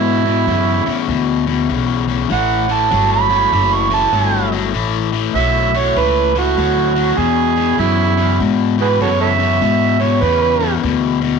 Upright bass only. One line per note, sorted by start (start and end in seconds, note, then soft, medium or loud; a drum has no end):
0.00 0.46 G#2 medium
0.47 0.83 F#2 medium
0.87 muted upright bass stroke soft
1.08 1.67 D2 medium
1.70 2.29 B1 medium
2.30 2.89 A1 medium
2.91 3.50 G1 medium
3.52 4.11 F#1 medium
4.12 4.71 G1 medium
4.73 5.33 A1 medium
5.34 5.94 B1 medium
5.96 6.55 C#2 medium
6.57 7.16 D2 medium
7.17 7.77 E2 medium
7.79 8.38 F#2 medium
8.40 8.99 G#2 loud
9.00 9.59 F#2 medium
9.61 10.20 G#2 medium
10.22 10.80 E2 loud
10.83 11.39 D2 loud